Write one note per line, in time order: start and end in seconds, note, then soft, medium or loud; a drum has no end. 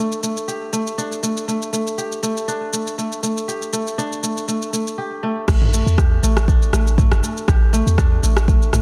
0.00 0.23 A3 medium
0.00 0.98 D4 medium
0.00 0.39 G4 medium
0.12 shaker soft
0.23 0.72 A3 medium
0.23 shaker medium
0.37 shaker soft
0.48 1.89 G4 medium
0.48 shaker soft
0.73 1.22 A3 medium
0.73 shaker medium
0.87 shaker soft
0.98 2.47 D4 medium
0.98 shaker soft
1.12 shaker soft
1.23 1.47 A3 medium
1.23 shaker medium
1.37 shaker soft
1.48 1.72 A3 medium
1.48 shaker soft
1.62 shaker soft
1.73 2.22 A3 medium
1.73 shaker medium
1.87 shaker soft
1.98 3.39 G4 medium
1.98 shaker soft
2.12 shaker soft
2.23 2.73 A3 loud
2.23 shaker medium
2.37 shaker soft
2.48 3.98 D4 loud
2.48 shaker soft
2.73 2.98 A3 medium
2.73 shaker medium
2.87 shaker soft
2.98 3.23 A3 medium
2.98 shaker soft
3.12 shaker soft
3.23 3.72 A3 medium
3.23 shaker medium
3.37 shaker soft
3.48 4.89 G4 medium
3.48 shaker soft
3.62 shaker soft
3.73 4.23 A3 loud
3.73 shaker medium
3.87 shaker soft
3.98 5.66 D4 loud
3.98 shaker soft
4.12 shaker soft
4.23 4.48 A3 medium
4.23 shaker medium
4.37 shaker soft
4.48 4.73 A3 medium
4.48 shaker soft
4.62 shaker soft
4.73 5.23 A3 medium
4.73 shaker medium
4.87 shaker soft
4.98 5.98 G4 medium
5.23 5.48 A3 loud
5.48 5.82 A1 loud
5.48 5.73 A3 medium
5.48 kick loud
5.48 cross-stick loud
5.48 crash loud
5.48 shaker medium
5.62 mid tom medium
5.73 6.23 A3 medium
5.73 shaker medium
5.86 6.19 E2 loud
5.86 shaker soft
5.98 7.39 G4 medium
5.98 kick loud
5.98 cross-stick medium
5.98 shaker medium
6.23 6.57 A1 loud
6.23 6.73 A3 loud
6.23 shaker medium
6.37 cross-stick loud
6.37 shaker soft
6.48 7.98 D4 loud
6.48 kick loud
6.48 shaker medium
6.62 shaker soft
6.73 7.07 A1 medium
6.73 6.98 A3 medium
6.73 cross-stick medium
6.73 shaker loud
6.87 shaker soft
6.98 7.22 A3 medium
6.98 kick loud
6.98 mid tom loud
6.98 shaker medium
7.12 7.21 G1 loud
7.12 cross-stick loud
7.12 shaker soft
7.23 7.73 A3 medium
7.23 shaker medium
7.37 shaker soft
7.48 7.82 A1 loud
7.48 8.82 G4 medium
7.48 kick loud
7.48 cross-stick loud
7.48 shaker medium
7.73 8.23 A3 loud
7.73 shaker loud
7.87 8.19 E2 loud
7.87 shaker soft
7.98 8.82 D4 loud
7.98 kick loud
7.98 cross-stick medium
7.98 shaker medium
8.23 8.57 A1 loud
8.23 8.47 A3 medium
8.23 shaker medium
8.37 cross-stick loud
8.37 shaker soft
8.48 8.73 A3 medium
8.48 kick loud
8.48 shaker medium
8.62 shaker soft
8.73 8.82 A1 medium
8.73 8.82 A3 medium
8.73 cross-stick medium
8.73 mid tom medium
8.73 shaker medium